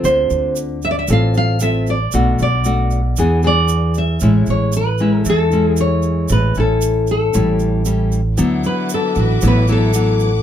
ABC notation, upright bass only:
X:1
M:4/4
L:1/8
Q:1/4=115
K:A
V:1 name="Upright bass" clef=bass
D,, D,,3 A,,,4 | B,,, B,,,3 E,,4 | A,,, A,,,3 E,,4 | A,,, A,,,3 A,,,4 |
[K:D] D,, z2 A,,, A,,,4 |]